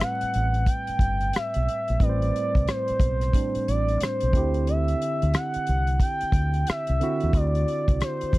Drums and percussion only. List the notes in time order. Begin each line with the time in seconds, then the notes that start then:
0.00 cross-stick, closed hi-hat
0.21 closed hi-hat
0.34 closed hi-hat
0.54 closed hi-hat
0.66 kick, closed hi-hat
0.87 closed hi-hat
0.99 kick, closed hi-hat
1.21 closed hi-hat
1.33 cross-stick, closed hi-hat
1.54 closed hi-hat
1.69 closed hi-hat
1.88 closed hi-hat
2.00 kick, closed hi-hat
2.22 closed hi-hat
2.36 closed hi-hat
2.55 kick, closed hi-hat
2.68 cross-stick, closed hi-hat
2.88 closed hi-hat
3.00 kick, closed hi-hat
3.21 cross-stick, closed hi-hat
3.33 kick, closed hi-hat
3.55 closed hi-hat
3.68 closed hi-hat
3.88 closed hi-hat
4.01 cross-stick, closed hi-hat
4.21 closed hi-hat
4.33 kick, closed hi-hat
4.54 closed hi-hat
4.67 closed hi-hat
4.88 closed hi-hat
5.02 closed hi-hat
5.22 closed hi-hat
5.34 cross-stick, closed hi-hat
5.54 closed hi-hat
5.67 closed hi-hat
5.87 closed hi-hat
6.00 kick, closed hi-hat
6.21 closed hi-hat
6.32 kick, closed hi-hat
6.54 closed hi-hat
6.67 cross-stick, closed hi-hat
6.87 closed hi-hat
7.01 closed hi-hat
7.20 closed hi-hat
7.33 kick, closed hi-hat
7.55 closed hi-hat
7.68 closed hi-hat
7.88 kick, closed hi-hat
8.01 cross-stick, closed hi-hat
8.21 closed hi-hat
8.33 kick, closed hi-hat